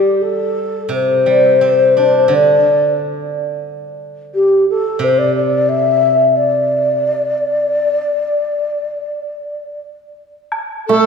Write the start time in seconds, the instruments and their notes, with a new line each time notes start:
Already playing: guzheng G3, xiao G4
0.22 xiao A4
0.89 guzheng C3
0.94 xiao C5
1.26 guzheng G3
1.61 guzheng C4
1.97 guzheng D4
2.28 guzheng D3
2.34 xiao D5
4.35 xiao G4
4.70 xiao A4
4.99 guzheng C3
5.04 xiao C5
5.18 xiao D5
5.36 xiao D5
5.69 xiao E5
6.36 xiao D5
10.52 high woodblock
10.87 hammered dulcimer A3, xiao A4, dizi A4